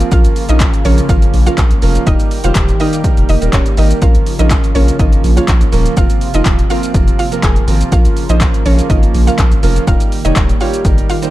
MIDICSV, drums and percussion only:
0, 0, Header, 1, 2, 480
1, 0, Start_track
1, 0, Tempo, 487805
1, 115, Time_signature, 4, 2, 24, 8
1, 11122, End_track
2, 0, Start_track
2, 0, Title_t, "Drums"
2, 4, Note_on_c, 9, 42, 53
2, 4, Note_on_c, 9, 82, 71
2, 102, Note_off_c, 9, 42, 0
2, 102, Note_off_c, 9, 82, 0
2, 114, Note_on_c, 9, 42, 72
2, 114, Note_on_c, 9, 82, 75
2, 115, Note_on_c, 9, 36, 119
2, 212, Note_off_c, 9, 42, 0
2, 212, Note_off_c, 9, 82, 0
2, 213, Note_off_c, 9, 36, 0
2, 241, Note_on_c, 9, 42, 63
2, 241, Note_on_c, 9, 82, 66
2, 339, Note_off_c, 9, 42, 0
2, 339, Note_off_c, 9, 82, 0
2, 355, Note_on_c, 9, 46, 78
2, 355, Note_on_c, 9, 82, 56
2, 453, Note_off_c, 9, 46, 0
2, 453, Note_off_c, 9, 82, 0
2, 479, Note_on_c, 9, 42, 64
2, 479, Note_on_c, 9, 82, 87
2, 578, Note_off_c, 9, 42, 0
2, 578, Note_off_c, 9, 82, 0
2, 592, Note_on_c, 9, 39, 123
2, 595, Note_off_c, 9, 39, 0
2, 595, Note_on_c, 9, 36, 122
2, 595, Note_on_c, 9, 39, 86
2, 596, Note_on_c, 9, 42, 79
2, 596, Note_on_c, 9, 82, 83
2, 693, Note_off_c, 9, 36, 0
2, 694, Note_off_c, 9, 39, 0
2, 694, Note_off_c, 9, 42, 0
2, 694, Note_off_c, 9, 82, 0
2, 724, Note_on_c, 9, 42, 53
2, 724, Note_on_c, 9, 82, 51
2, 822, Note_off_c, 9, 42, 0
2, 822, Note_off_c, 9, 82, 0
2, 835, Note_on_c, 9, 46, 76
2, 835, Note_on_c, 9, 82, 55
2, 933, Note_off_c, 9, 46, 0
2, 933, Note_off_c, 9, 82, 0
2, 964, Note_on_c, 9, 42, 58
2, 964, Note_on_c, 9, 82, 79
2, 1062, Note_off_c, 9, 42, 0
2, 1062, Note_off_c, 9, 82, 0
2, 1074, Note_on_c, 9, 36, 119
2, 1074, Note_on_c, 9, 42, 76
2, 1074, Note_on_c, 9, 82, 74
2, 1172, Note_off_c, 9, 36, 0
2, 1172, Note_off_c, 9, 42, 0
2, 1172, Note_off_c, 9, 82, 0
2, 1203, Note_on_c, 9, 42, 54
2, 1203, Note_on_c, 9, 82, 54
2, 1301, Note_off_c, 9, 42, 0
2, 1301, Note_off_c, 9, 82, 0
2, 1316, Note_on_c, 9, 46, 76
2, 1316, Note_on_c, 9, 82, 55
2, 1414, Note_off_c, 9, 46, 0
2, 1414, Note_off_c, 9, 82, 0
2, 1443, Note_on_c, 9, 42, 53
2, 1443, Note_on_c, 9, 82, 73
2, 1541, Note_off_c, 9, 42, 0
2, 1541, Note_off_c, 9, 82, 0
2, 1552, Note_on_c, 9, 36, 114
2, 1552, Note_on_c, 9, 42, 76
2, 1552, Note_on_c, 9, 82, 79
2, 1555, Note_on_c, 9, 39, 125
2, 1557, Note_off_c, 9, 39, 0
2, 1557, Note_on_c, 9, 39, 79
2, 1651, Note_off_c, 9, 36, 0
2, 1651, Note_off_c, 9, 42, 0
2, 1651, Note_off_c, 9, 82, 0
2, 1655, Note_off_c, 9, 39, 0
2, 1679, Note_on_c, 9, 42, 53
2, 1679, Note_on_c, 9, 82, 55
2, 1778, Note_off_c, 9, 42, 0
2, 1778, Note_off_c, 9, 82, 0
2, 1792, Note_on_c, 9, 46, 89
2, 1792, Note_on_c, 9, 82, 67
2, 1891, Note_off_c, 9, 46, 0
2, 1891, Note_off_c, 9, 82, 0
2, 1921, Note_on_c, 9, 42, 53
2, 1921, Note_on_c, 9, 82, 72
2, 2020, Note_off_c, 9, 42, 0
2, 2020, Note_off_c, 9, 82, 0
2, 2034, Note_on_c, 9, 36, 121
2, 2034, Note_on_c, 9, 42, 78
2, 2034, Note_on_c, 9, 82, 71
2, 2132, Note_off_c, 9, 42, 0
2, 2132, Note_off_c, 9, 82, 0
2, 2133, Note_off_c, 9, 36, 0
2, 2161, Note_on_c, 9, 42, 63
2, 2161, Note_on_c, 9, 82, 63
2, 2259, Note_off_c, 9, 42, 0
2, 2259, Note_off_c, 9, 82, 0
2, 2275, Note_on_c, 9, 46, 78
2, 2275, Note_on_c, 9, 82, 53
2, 2373, Note_off_c, 9, 46, 0
2, 2373, Note_off_c, 9, 82, 0
2, 2399, Note_on_c, 9, 42, 62
2, 2399, Note_on_c, 9, 82, 86
2, 2498, Note_off_c, 9, 42, 0
2, 2498, Note_off_c, 9, 82, 0
2, 2513, Note_on_c, 9, 39, 121
2, 2515, Note_on_c, 9, 36, 119
2, 2516, Note_on_c, 9, 42, 79
2, 2516, Note_on_c, 9, 82, 84
2, 2611, Note_off_c, 9, 39, 0
2, 2613, Note_off_c, 9, 36, 0
2, 2615, Note_off_c, 9, 42, 0
2, 2615, Note_off_c, 9, 82, 0
2, 2643, Note_on_c, 9, 42, 50
2, 2643, Note_on_c, 9, 82, 53
2, 2742, Note_off_c, 9, 42, 0
2, 2742, Note_off_c, 9, 82, 0
2, 2754, Note_on_c, 9, 46, 79
2, 2754, Note_on_c, 9, 82, 53
2, 2853, Note_off_c, 9, 46, 0
2, 2853, Note_off_c, 9, 82, 0
2, 2883, Note_on_c, 9, 42, 60
2, 2883, Note_on_c, 9, 82, 82
2, 2982, Note_off_c, 9, 42, 0
2, 2982, Note_off_c, 9, 82, 0
2, 2993, Note_on_c, 9, 36, 118
2, 2994, Note_on_c, 9, 42, 74
2, 2994, Note_on_c, 9, 82, 74
2, 3092, Note_off_c, 9, 36, 0
2, 3092, Note_off_c, 9, 42, 0
2, 3092, Note_off_c, 9, 82, 0
2, 3122, Note_on_c, 9, 42, 53
2, 3122, Note_on_c, 9, 82, 56
2, 3221, Note_off_c, 9, 42, 0
2, 3221, Note_off_c, 9, 82, 0
2, 3237, Note_on_c, 9, 46, 75
2, 3237, Note_on_c, 9, 82, 52
2, 3335, Note_off_c, 9, 46, 0
2, 3335, Note_off_c, 9, 82, 0
2, 3364, Note_on_c, 9, 42, 51
2, 3364, Note_on_c, 9, 82, 73
2, 3462, Note_off_c, 9, 42, 0
2, 3462, Note_off_c, 9, 82, 0
2, 3473, Note_on_c, 9, 36, 114
2, 3473, Note_on_c, 9, 42, 78
2, 3473, Note_on_c, 9, 82, 77
2, 3476, Note_on_c, 9, 39, 120
2, 3477, Note_off_c, 9, 39, 0
2, 3477, Note_on_c, 9, 39, 80
2, 3571, Note_off_c, 9, 36, 0
2, 3572, Note_off_c, 9, 42, 0
2, 3572, Note_off_c, 9, 82, 0
2, 3576, Note_off_c, 9, 39, 0
2, 3599, Note_on_c, 9, 42, 56
2, 3599, Note_on_c, 9, 82, 56
2, 3698, Note_off_c, 9, 42, 0
2, 3698, Note_off_c, 9, 82, 0
2, 3713, Note_on_c, 9, 46, 88
2, 3713, Note_on_c, 9, 82, 68
2, 3811, Note_off_c, 9, 46, 0
2, 3811, Note_off_c, 9, 82, 0
2, 3843, Note_on_c, 9, 42, 51
2, 3843, Note_on_c, 9, 82, 76
2, 3941, Note_off_c, 9, 42, 0
2, 3941, Note_off_c, 9, 82, 0
2, 3953, Note_on_c, 9, 42, 75
2, 3953, Note_on_c, 9, 82, 74
2, 3955, Note_on_c, 9, 36, 118
2, 4052, Note_off_c, 9, 42, 0
2, 4052, Note_off_c, 9, 82, 0
2, 4053, Note_off_c, 9, 36, 0
2, 4081, Note_on_c, 9, 42, 61
2, 4081, Note_on_c, 9, 82, 63
2, 4179, Note_off_c, 9, 42, 0
2, 4179, Note_off_c, 9, 82, 0
2, 4197, Note_on_c, 9, 46, 77
2, 4197, Note_on_c, 9, 82, 55
2, 4295, Note_off_c, 9, 46, 0
2, 4295, Note_off_c, 9, 82, 0
2, 4322, Note_on_c, 9, 42, 61
2, 4322, Note_on_c, 9, 82, 86
2, 4420, Note_off_c, 9, 42, 0
2, 4420, Note_off_c, 9, 82, 0
2, 4433, Note_on_c, 9, 39, 120
2, 4434, Note_off_c, 9, 39, 0
2, 4434, Note_on_c, 9, 39, 88
2, 4435, Note_on_c, 9, 36, 118
2, 4437, Note_on_c, 9, 42, 85
2, 4437, Note_on_c, 9, 82, 80
2, 4532, Note_off_c, 9, 39, 0
2, 4534, Note_off_c, 9, 36, 0
2, 4535, Note_off_c, 9, 42, 0
2, 4535, Note_off_c, 9, 82, 0
2, 4564, Note_on_c, 9, 42, 51
2, 4564, Note_on_c, 9, 82, 51
2, 4663, Note_off_c, 9, 42, 0
2, 4663, Note_off_c, 9, 82, 0
2, 4676, Note_on_c, 9, 46, 76
2, 4676, Note_on_c, 9, 82, 54
2, 4774, Note_off_c, 9, 46, 0
2, 4774, Note_off_c, 9, 82, 0
2, 4805, Note_on_c, 9, 42, 58
2, 4805, Note_on_c, 9, 82, 83
2, 4903, Note_off_c, 9, 42, 0
2, 4903, Note_off_c, 9, 82, 0
2, 4914, Note_on_c, 9, 36, 127
2, 4915, Note_on_c, 9, 42, 76
2, 4915, Note_on_c, 9, 82, 73
2, 5013, Note_off_c, 9, 36, 0
2, 5013, Note_off_c, 9, 42, 0
2, 5013, Note_off_c, 9, 82, 0
2, 5043, Note_on_c, 9, 42, 51
2, 5043, Note_on_c, 9, 82, 55
2, 5142, Note_off_c, 9, 42, 0
2, 5142, Note_off_c, 9, 82, 0
2, 5158, Note_on_c, 9, 46, 77
2, 5158, Note_on_c, 9, 82, 54
2, 5256, Note_off_c, 9, 46, 0
2, 5256, Note_off_c, 9, 82, 0
2, 5285, Note_on_c, 9, 42, 51
2, 5285, Note_on_c, 9, 82, 73
2, 5383, Note_off_c, 9, 42, 0
2, 5383, Note_off_c, 9, 82, 0
2, 5393, Note_on_c, 9, 36, 114
2, 5393, Note_on_c, 9, 42, 81
2, 5393, Note_on_c, 9, 82, 80
2, 5396, Note_on_c, 9, 39, 121
2, 5398, Note_off_c, 9, 39, 0
2, 5398, Note_on_c, 9, 39, 77
2, 5492, Note_off_c, 9, 36, 0
2, 5492, Note_off_c, 9, 42, 0
2, 5492, Note_off_c, 9, 82, 0
2, 5496, Note_off_c, 9, 39, 0
2, 5520, Note_on_c, 9, 42, 57
2, 5520, Note_on_c, 9, 82, 55
2, 5618, Note_off_c, 9, 42, 0
2, 5618, Note_off_c, 9, 82, 0
2, 5633, Note_on_c, 9, 46, 88
2, 5633, Note_on_c, 9, 82, 66
2, 5732, Note_off_c, 9, 46, 0
2, 5732, Note_off_c, 9, 82, 0
2, 5763, Note_on_c, 9, 42, 53
2, 5763, Note_on_c, 9, 82, 74
2, 5861, Note_off_c, 9, 42, 0
2, 5861, Note_off_c, 9, 82, 0
2, 5873, Note_on_c, 9, 42, 70
2, 5873, Note_on_c, 9, 82, 78
2, 5874, Note_on_c, 9, 36, 124
2, 5972, Note_off_c, 9, 42, 0
2, 5972, Note_off_c, 9, 82, 0
2, 5973, Note_off_c, 9, 36, 0
2, 6000, Note_on_c, 9, 42, 66
2, 6000, Note_on_c, 9, 82, 61
2, 6098, Note_off_c, 9, 42, 0
2, 6098, Note_off_c, 9, 82, 0
2, 6114, Note_on_c, 9, 46, 74
2, 6114, Note_on_c, 9, 82, 57
2, 6212, Note_off_c, 9, 46, 0
2, 6212, Note_off_c, 9, 82, 0
2, 6238, Note_on_c, 9, 42, 65
2, 6238, Note_on_c, 9, 82, 87
2, 6336, Note_off_c, 9, 42, 0
2, 6336, Note_off_c, 9, 82, 0
2, 6351, Note_on_c, 9, 39, 118
2, 6354, Note_off_c, 9, 39, 0
2, 6354, Note_on_c, 9, 36, 120
2, 6354, Note_on_c, 9, 39, 86
2, 6354, Note_on_c, 9, 42, 81
2, 6354, Note_on_c, 9, 82, 84
2, 6452, Note_off_c, 9, 36, 0
2, 6452, Note_off_c, 9, 39, 0
2, 6453, Note_off_c, 9, 42, 0
2, 6453, Note_off_c, 9, 82, 0
2, 6483, Note_on_c, 9, 42, 52
2, 6483, Note_on_c, 9, 82, 52
2, 6581, Note_off_c, 9, 42, 0
2, 6581, Note_off_c, 9, 82, 0
2, 6593, Note_on_c, 9, 46, 76
2, 6593, Note_on_c, 9, 82, 56
2, 6692, Note_off_c, 9, 46, 0
2, 6692, Note_off_c, 9, 82, 0
2, 6722, Note_on_c, 9, 42, 57
2, 6722, Note_on_c, 9, 82, 83
2, 6821, Note_off_c, 9, 42, 0
2, 6821, Note_off_c, 9, 82, 0
2, 6833, Note_on_c, 9, 36, 125
2, 6834, Note_on_c, 9, 42, 77
2, 6834, Note_on_c, 9, 82, 74
2, 6931, Note_off_c, 9, 36, 0
2, 6932, Note_off_c, 9, 42, 0
2, 6932, Note_off_c, 9, 82, 0
2, 6963, Note_on_c, 9, 42, 55
2, 6963, Note_on_c, 9, 82, 56
2, 7062, Note_off_c, 9, 42, 0
2, 7062, Note_off_c, 9, 82, 0
2, 7077, Note_on_c, 9, 46, 77
2, 7077, Note_on_c, 9, 82, 55
2, 7175, Note_off_c, 9, 46, 0
2, 7175, Note_off_c, 9, 82, 0
2, 7204, Note_on_c, 9, 42, 52
2, 7204, Note_on_c, 9, 82, 71
2, 7302, Note_off_c, 9, 42, 0
2, 7302, Note_off_c, 9, 82, 0
2, 7313, Note_on_c, 9, 36, 108
2, 7314, Note_on_c, 9, 42, 75
2, 7314, Note_on_c, 9, 82, 76
2, 7316, Note_on_c, 9, 39, 118
2, 7411, Note_off_c, 9, 36, 0
2, 7412, Note_off_c, 9, 42, 0
2, 7412, Note_off_c, 9, 82, 0
2, 7415, Note_off_c, 9, 39, 0
2, 7441, Note_on_c, 9, 42, 53
2, 7441, Note_on_c, 9, 82, 56
2, 7539, Note_off_c, 9, 42, 0
2, 7539, Note_off_c, 9, 82, 0
2, 7555, Note_on_c, 9, 46, 96
2, 7555, Note_on_c, 9, 82, 64
2, 7653, Note_off_c, 9, 46, 0
2, 7653, Note_off_c, 9, 82, 0
2, 7683, Note_on_c, 9, 42, 55
2, 7683, Note_on_c, 9, 82, 75
2, 7782, Note_off_c, 9, 42, 0
2, 7782, Note_off_c, 9, 82, 0
2, 7794, Note_on_c, 9, 42, 75
2, 7794, Note_on_c, 9, 82, 75
2, 7795, Note_on_c, 9, 36, 121
2, 7892, Note_off_c, 9, 42, 0
2, 7892, Note_off_c, 9, 82, 0
2, 7893, Note_off_c, 9, 36, 0
2, 7921, Note_on_c, 9, 42, 64
2, 7921, Note_on_c, 9, 82, 62
2, 8020, Note_off_c, 9, 42, 0
2, 8020, Note_off_c, 9, 82, 0
2, 8036, Note_on_c, 9, 46, 75
2, 8036, Note_on_c, 9, 82, 55
2, 8134, Note_off_c, 9, 46, 0
2, 8134, Note_off_c, 9, 82, 0
2, 8161, Note_on_c, 9, 42, 59
2, 8161, Note_on_c, 9, 82, 85
2, 8259, Note_off_c, 9, 42, 0
2, 8259, Note_off_c, 9, 82, 0
2, 8274, Note_on_c, 9, 39, 126
2, 8276, Note_on_c, 9, 36, 123
2, 8278, Note_on_c, 9, 42, 79
2, 8278, Note_on_c, 9, 82, 79
2, 8373, Note_off_c, 9, 39, 0
2, 8374, Note_off_c, 9, 36, 0
2, 8376, Note_off_c, 9, 42, 0
2, 8376, Note_off_c, 9, 82, 0
2, 8406, Note_on_c, 9, 42, 53
2, 8406, Note_on_c, 9, 82, 51
2, 8504, Note_off_c, 9, 42, 0
2, 8504, Note_off_c, 9, 82, 0
2, 8518, Note_on_c, 9, 46, 76
2, 8518, Note_on_c, 9, 82, 55
2, 8616, Note_off_c, 9, 46, 0
2, 8616, Note_off_c, 9, 82, 0
2, 8646, Note_on_c, 9, 42, 58
2, 8646, Note_on_c, 9, 82, 80
2, 8745, Note_off_c, 9, 42, 0
2, 8745, Note_off_c, 9, 82, 0
2, 8755, Note_on_c, 9, 36, 121
2, 8757, Note_on_c, 9, 42, 74
2, 8757, Note_on_c, 9, 82, 73
2, 8853, Note_off_c, 9, 36, 0
2, 8855, Note_off_c, 9, 42, 0
2, 8855, Note_off_c, 9, 82, 0
2, 8885, Note_on_c, 9, 42, 54
2, 8885, Note_on_c, 9, 82, 51
2, 8983, Note_off_c, 9, 42, 0
2, 8983, Note_off_c, 9, 82, 0
2, 8999, Note_on_c, 9, 46, 75
2, 8999, Note_on_c, 9, 82, 53
2, 9097, Note_off_c, 9, 46, 0
2, 9097, Note_off_c, 9, 82, 0
2, 9127, Note_on_c, 9, 42, 50
2, 9127, Note_on_c, 9, 82, 72
2, 9225, Note_off_c, 9, 42, 0
2, 9225, Note_off_c, 9, 82, 0
2, 9234, Note_on_c, 9, 36, 117
2, 9235, Note_on_c, 9, 42, 76
2, 9235, Note_on_c, 9, 82, 74
2, 9238, Note_on_c, 9, 39, 119
2, 9333, Note_off_c, 9, 36, 0
2, 9334, Note_off_c, 9, 42, 0
2, 9334, Note_off_c, 9, 82, 0
2, 9336, Note_off_c, 9, 39, 0
2, 9363, Note_on_c, 9, 42, 54
2, 9363, Note_on_c, 9, 82, 55
2, 9462, Note_off_c, 9, 42, 0
2, 9462, Note_off_c, 9, 82, 0
2, 9477, Note_on_c, 9, 46, 93
2, 9477, Note_on_c, 9, 82, 66
2, 9575, Note_off_c, 9, 46, 0
2, 9575, Note_off_c, 9, 82, 0
2, 9606, Note_on_c, 9, 42, 54
2, 9606, Note_on_c, 9, 82, 74
2, 9704, Note_off_c, 9, 42, 0
2, 9704, Note_off_c, 9, 82, 0
2, 9716, Note_on_c, 9, 36, 121
2, 9717, Note_on_c, 9, 42, 76
2, 9717, Note_on_c, 9, 82, 74
2, 9815, Note_off_c, 9, 36, 0
2, 9815, Note_off_c, 9, 42, 0
2, 9815, Note_off_c, 9, 82, 0
2, 9843, Note_on_c, 9, 42, 64
2, 9843, Note_on_c, 9, 82, 60
2, 9942, Note_off_c, 9, 42, 0
2, 9942, Note_off_c, 9, 82, 0
2, 9960, Note_on_c, 9, 46, 78
2, 9960, Note_on_c, 9, 82, 55
2, 10058, Note_off_c, 9, 46, 0
2, 10058, Note_off_c, 9, 82, 0
2, 10084, Note_on_c, 9, 42, 61
2, 10084, Note_on_c, 9, 82, 85
2, 10183, Note_off_c, 9, 42, 0
2, 10183, Note_off_c, 9, 82, 0
2, 10195, Note_on_c, 9, 39, 117
2, 10197, Note_on_c, 9, 36, 122
2, 10199, Note_on_c, 9, 42, 81
2, 10199, Note_on_c, 9, 82, 80
2, 10294, Note_off_c, 9, 39, 0
2, 10295, Note_off_c, 9, 36, 0
2, 10297, Note_off_c, 9, 42, 0
2, 10297, Note_off_c, 9, 82, 0
2, 10326, Note_on_c, 9, 42, 53
2, 10326, Note_on_c, 9, 82, 53
2, 10424, Note_off_c, 9, 42, 0
2, 10424, Note_off_c, 9, 82, 0
2, 10436, Note_on_c, 9, 46, 74
2, 10436, Note_on_c, 9, 82, 54
2, 10534, Note_off_c, 9, 46, 0
2, 10534, Note_off_c, 9, 82, 0
2, 10564, Note_on_c, 9, 42, 59
2, 10564, Note_on_c, 9, 82, 85
2, 10663, Note_off_c, 9, 42, 0
2, 10663, Note_off_c, 9, 82, 0
2, 10675, Note_on_c, 9, 36, 123
2, 10675, Note_on_c, 9, 42, 73
2, 10675, Note_on_c, 9, 82, 70
2, 10773, Note_off_c, 9, 36, 0
2, 10774, Note_off_c, 9, 42, 0
2, 10774, Note_off_c, 9, 82, 0
2, 10805, Note_on_c, 9, 42, 54
2, 10805, Note_on_c, 9, 82, 54
2, 10903, Note_off_c, 9, 42, 0
2, 10903, Note_off_c, 9, 82, 0
2, 10918, Note_on_c, 9, 46, 75
2, 10918, Note_on_c, 9, 82, 53
2, 11017, Note_off_c, 9, 46, 0
2, 11017, Note_off_c, 9, 82, 0
2, 11045, Note_on_c, 9, 42, 53
2, 11045, Note_on_c, 9, 82, 71
2, 11122, Note_off_c, 9, 42, 0
2, 11122, Note_off_c, 9, 82, 0
2, 11122, End_track
0, 0, End_of_file